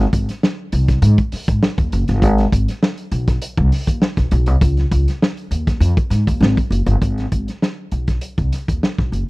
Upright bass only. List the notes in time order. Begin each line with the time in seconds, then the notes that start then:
0.13 G#1
0.73 C2
1.02 G#2
1.33 muted upright bass stroke
1.48 G#2
1.78 D#2
1.93 F#1
2.09 G1
2.23 G#1
2.52 G#1
3.12 B1
3.58 C2
3.87 D#2
4.17 B1
4.32 B1
4.47 C2
4.61 C#2
4.92 C#2
5.51 D#2
5.80 F2
6.10 G#2
6.28 D#2
6.41 G#1
6.71 F#1
6.86 G1
7.02 G#1
7.32 G#1
7.92 B1
8.38 C2
8.69 D#2
8.99 B1
9.12 F#1